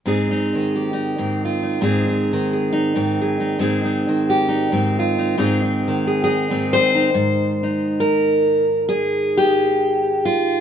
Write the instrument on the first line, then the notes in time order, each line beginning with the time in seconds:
steel-string acoustic guitar
0.06 G#2 C4 D#4 G#4
0.31 D#4
0.55 D#3
0.76 G4
0.93 D#4
1.18 G#2 C4
1.45 F4
1.62 D#4
1.81 G#2 C4 D#4 G#4
2.08 D#4
2.33 D#3
2.53 G#4
2.72 D#4
2.95 G#2 C4
3.21 G#4
3.40 D#4
3.59 G#2 C4 D#4 G#4
3.84 D#4
4.09 D#3
4.30 G4
4.49 D#4
4.72 G#2 C4
4.99 F4
5.18 D#4
5.37 G#2 C4 D#4 G#4
5.63 D#4
5.88 D#3
6.07 G#4
6.24 D#4 G#4
6.50 G#2 C4
6.73 G#4 C5
6.95 D#4
7.14 G#2
7.63 D#4
8.00 A#4
8.89 G#4
9.37 G4
10.25 F4